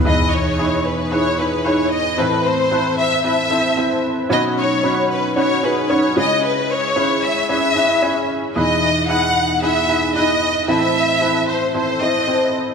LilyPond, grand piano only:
<<
  \new Staff \with { instrumentName = "Grand piano" } { \time 4/4 \key e \major \tempo 4 = 113 <dis' e' gis' b'>4 <dis' e' gis' b'>4 <dis' e' gis' b'>8 <dis' e' gis' b'>8 <dis' e' gis' b'>4 | <c' e' a' b'>4 <c' e' a' b'>4 <c' e' a' b'>8 <c' e' a' c''>8 <c' e' a' c''>4 | <cis' dis' fis' b'>4 <cis' dis' fis' b'>4 <cis' dis' fis' b'>8 <cis' dis' fis' gis'>8 <cis' dis' fis' b'>8 <cis' e' gis' b'>8~ | <cis' e' gis' b'>8 r8 <cis' e' gis' b'>4 <cis' e' gis' b'>8 <cis' e' gis' b'>8 <cis' e' gis' b'>4 |
<dis' e' gis' b'>4 <dis' e' gis' b'>4 <dis' e' gis' b'>8 <dis' e' gis' b'>8 <dis' e' gis' b'>4 | <c' e' a' b'>4 <c' e' a' b'>4 <c' e' a' c''>8 <c' e' a' c''>8 <c' e' a' c''>4 | }
  \new Staff \with { instrumentName = "Grand piano" } { \clef bass \time 4/4 \key e \major <e, b,>1 | <a, e>1 | <b, fis>2.~ <b, fis>8 <cis gis>8~ | <cis gis>2.~ <cis gis>8 r8 |
<e, b,>1 | <a, e>1 | }
>>